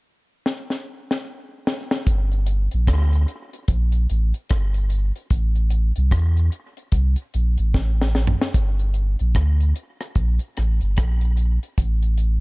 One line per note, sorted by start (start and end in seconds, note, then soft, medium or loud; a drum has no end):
0.46 snare medium
0.70 snare soft
1.11 snare medium
1.67 snare loud
1.91 snare medium
2.07 2.68 G1 loud
2.07 kick loud
2.07 closed hi-hat medium
2.32 closed hi-hat soft
2.46 closed hi-hat medium
2.71 2.88 A#1 medium
2.71 closed hi-hat medium
2.87 3.26 D2 medium
2.87 kick loud
2.87 cross-stick loud
2.87 closed hi-hat medium
3.13 closed hi-hat medium
3.28 closed hi-hat medium
3.53 closed hi-hat medium
3.68 4.07 A#1 medium
3.68 kick loud
3.68 closed hi-hat medium
3.92 closed hi-hat medium
4.10 4.33 A1 loud
4.10 closed hi-hat medium
4.34 closed hi-hat soft
4.50 5.11 G1 loud
4.50 kick loud
4.50 cross-stick loud
4.50 closed hi-hat medium
4.74 closed hi-hat medium
4.90 closed hi-hat medium
5.16 closed hi-hat soft
5.30 5.92 A1 loud
5.30 kick loud
5.30 closed hi-hat medium
5.55 closed hi-hat soft
5.70 closed hi-hat medium
5.96 6.12 C2 loud
5.96 closed hi-hat soft
6.11 6.50 E2 medium
6.11 kick loud
6.11 cross-stick loud
6.11 closed hi-hat medium
6.37 closed hi-hat medium
6.52 closed hi-hat medium
6.77 closed hi-hat medium
6.92 7.16 C2 loud
6.92 kick loud
6.92 closed hi-hat medium
7.16 closed hi-hat soft
7.34 7.57 A#1 medium
7.34 closed hi-hat medium
7.58 7.73 A1 medium
7.58 closed hi-hat soft
7.74 8.35 A1 medium
7.74 kick loud
7.74 snare medium
8.02 snare medium
8.15 snare medium
8.27 floor tom medium
8.41 snare medium
8.54 9.16 G1 medium
8.54 kick loud
8.54 closed hi-hat medium
8.79 closed hi-hat soft
8.94 closed hi-hat medium
9.19 9.35 A#1 medium
9.19 closed hi-hat soft
9.35 9.73 D2 medium
9.35 kick loud
9.35 cross-stick medium
9.35 closed hi-hat medium
9.60 closed hi-hat medium
9.76 closed hi-hat medium
10.01 cross-stick medium
10.01 closed hi-hat medium
10.15 10.39 A#1 loud
10.15 kick loud
10.15 closed hi-hat medium
10.39 closed hi-hat medium
10.57 10.80 A1 loud
10.57 cross-stick medium
10.57 closed hi-hat medium
10.81 11.00 G1 medium
10.81 closed hi-hat soft
10.97 11.58 A#1 medium
10.97 kick loud
10.97 cross-stick loud
10.97 closed hi-hat medium
11.21 closed hi-hat medium
11.37 closed hi-hat medium
11.63 closed hi-hat soft
11.78 12.39 A1 loud
11.78 kick loud
11.78 closed hi-hat medium
12.03 closed hi-hat soft
12.18 closed hi-hat medium